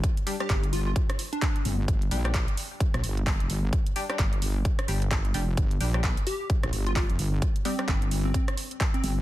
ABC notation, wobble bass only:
X:1
M:4/4
L:1/16
Q:"Swing 16ths" 1/4=130
K:Gm
V:1 name="Wobble bass" clef=bass
z4 G,,,4 z6 G,,,2 | G,,,2 B,,,3 z4 B,,, G,,,3 F,,, G,,,2 | z4 G,,,4 z2 G,,,4 F,,,2 | G,,,2 B,,,3 z4 B,,, G,,,3 F,,, G,,,2 |
z4 G,,,4 z6 G,,,2 |]